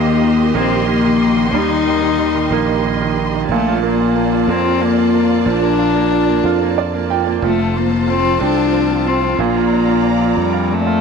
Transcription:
Already playing: D#2 D#3 A#3 G4 D#5 G5 C6
0.06 D#3
0.22 D#3
0.39 D#3
0.55 A#1 A#3 C4
0.71 D#3
0.87 D#3 A#3
1.04 D#3
1.20 D#3
1.36 D#3
1.53 D#2 G3 D#4
1.69 D#3
1.85 D#3
2.02 D#3
2.18 D#3
2.35 D#3
2.51 A#1 A#3
2.69 D#3
2.85 D#3
3.01 D#3
3.18 D#3
3.35 D#3
3.49 A#1 A#2 A3 F4 D5 A5
3.68 F4
3.83 A#3
4.01 F4
4.16 A#3
4.32 F4
4.47 F2 A#3 C4
4.64 F4
4.82 A#3
4.98 F4
5.14 A#3
5.31 F4
5.46 A#1 F3 D4
5.62 A#3
5.79 F4
5.95 A#3
6.12 F4
6.29 A#3
6.44 F2 F4
6.61 A#3
6.78 F4 D5
6.94 A#3
7.10 F4 G5
7.26 A#3
7.42 F1 F3 A3 F4 A4 C5 A5
7.58 F3
7.74 F3 A#3
7.90 F3
8.08 F3 C4
8.24 F3
8.41 C2 C4 D4
8.57 F3
8.73 F3
8.89 F3
9.06 F3 C4
9.23 F3
9.39 A#1 A#2 A#3 D5 A#5
9.56 F4
9.73 D4
9.89 F4
10.05 F3
10.21 F4
10.37 F2 G3
10.54 F4
10.73 A3
10.86 F4

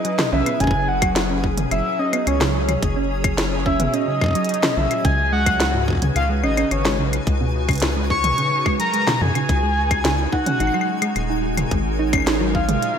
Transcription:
Already playing: F#3 C#4 E4 G#4 B4 D#5 G#5
0.05 F#3, closed hi-hat
0.19 snare, mid tom
0.33 B1 C#4 E5, mid tom
0.46 B3, closed hi-hat, claves
0.60 F#1 C#4 G#5, kick, closed hi-hat
0.64 kick
0.67 kick
0.71 C#3, kick
0.88 F#5
1.02 F#3, kick, closed hi-hat, claves
1.16 snare, closed hi-hat
1.30 C#4
1.44 kick
1.58 closed hi-hat, mid tom
1.71 F#1 F#3 F#4 E5, closed hi-hat, claves
1.99 C#4 D#5
2.13 B3, closed hi-hat, claves
2.23 C#5
2.27 C#2 C#4 C#5, closed hi-hat, claves
2.41 C#3, snare
2.69 F#3, closed hi-hat, mid tom, claves
2.82 F#1, kick, closed hi-hat
2.96 C#4
3.24 kick, closed hi-hat, claves
3.38 F#3, snare, closed hi-hat
3.66 C#4 E5, kick
3.80 B3, closed hi-hat, mid tom
3.87 E5
3.94 C#4 D#5, closed hi-hat
4.07 C#3
4.21 kick, claves
4.24 kick
4.26 kick
4.28 kick
4.31 kick
4.33 F#3, kick, closed hi-hat
4.45 closed hi-hat
4.49 closed hi-hat
4.54 closed hi-hat
4.63 C#4, snare, mid tom
4.77 B1 E5, mid tom
4.91 closed hi-hat, claves
5.05 C#2 C#3 G#5, kick, closed hi-hat
5.32 G#3 F#5
5.46 F#3, kick, closed hi-hat, claves
5.60 G#3, snare, closed hi-hat
5.74 G#2 D#4
5.79 B4
5.88 kick
5.90 kick
5.93 kick
5.95 kick
5.97 kick
6.00 C#3, kick, closed hi-hat, mid tom
6.16 C#2 F5, closed hi-hat, claves
6.30 G#3
6.43 G#1 C#4 D#5, claves
6.57 C#4, closed hi-hat, claves
6.71 G#1 C#5, closed hi-hat, claves
6.85 G#3, snare
6.99 B1 C#3
7.13 closed hi-hat, claves
7.27 C#2 G#3, kick, closed hi-hat
7.41 B2
7.69 C#3, kick, closed hi-hat, claves
7.71 closed hi-hat
7.73 closed hi-hat
7.75 closed hi-hat
7.78 closed hi-hat
7.80 snare, closed hi-hat
7.82 closed hi-hat
7.96 G#3
8.10 C#6, kick
8.24 closed hi-hat, mid tom
8.38 C#3, closed hi-hat
8.66 G#3, kick, claves
8.80 F#3 A#5, closed hi-hat
8.94 G#3, closed hi-hat
9.07 B2, snare, mid tom
9.21 F#2 G#5, mid tom
9.35 C#3, closed hi-hat, claves
9.49 C#2, kick, closed hi-hat
9.63 G#3
9.91 kick, closed hi-hat, claves
10.05 C#3, snare, closed hi-hat
10.32 G#3 D#4 F#5, kick
10.46 C#4, closed hi-hat, mid tom
10.60 G#1 D#4, closed hi-hat, claves
10.67 claves
10.74 F#3, claves
10.81 claves
11.02 G#3, closed hi-hat, claves
11.16 D#1, closed hi-hat, claves
11.30 D#4
11.50 A#4
11.57 closed hi-hat, mid tom, claves
11.71 G#1 G#3, kick, closed hi-hat
11.81 C#5
11.99 D#4
12.13 C#4, kick, closed hi-hat, claves
12.15 claves
12.27 D#4, snare, closed hi-hat
12.41 F#3
12.55 F5, kick
12.69 G#3, closed hi-hat, mid tom
12.82 closed hi-hat

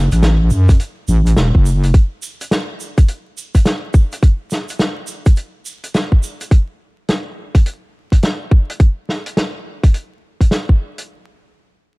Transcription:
0.12 A1, closed hi-hat, shaker
0.23 snare, closed hi-hat, shaker
0.50 F#2, shaker
0.69 kick, cross-stick, closed hi-hat, shaker
0.80 closed hi-hat, shaker
1.08 A1, shaker
1.26 closed hi-hat, shaker
1.36 E1, snare, closed hi-hat, shaker
1.55 F#1, kick
1.66 shaker
1.83 closed hi-hat, shaker
1.94 kick, closed hi-hat, shaker
2.22 shaker
2.41 closed hi-hat, shaker
2.51 snare, closed hi-hat, shaker
2.80 shaker
2.98 kick, closed hi-hat, shaker
3.08 closed hi-hat, shaker
3.38 shaker
3.55 kick, closed hi-hat, shaker
3.65 snare, closed hi-hat, shaker
3.94 kick, shaker
4.12 closed hi-hat, shaker
4.23 kick, closed hi-hat, shaker
4.51 snare, shaker
4.68 closed hi-hat, shaker
4.79 snare, closed hi-hat, shaker
5.07 shaker
5.26 kick, closed hi-hat, shaker
5.36 closed hi-hat, shaker
5.65 shaker
5.84 closed hi-hat, shaker
5.94 snare, closed hi-hat, shaker
6.12 kick
6.23 shaker
6.41 closed hi-hat, shaker
6.51 kick, closed hi-hat
7.08 snare, closed hi-hat
7.55 kick, closed hi-hat
7.66 closed hi-hat
8.12 kick, closed hi-hat
8.23 snare, closed hi-hat
8.51 kick
8.70 closed hi-hat
8.80 kick, closed hi-hat
9.09 snare
9.26 closed hi-hat
9.37 snare, closed hi-hat
9.83 kick, closed hi-hat
9.94 closed hi-hat
10.41 kick, closed hi-hat
10.51 snare, closed hi-hat
10.69 kick
10.98 closed hi-hat

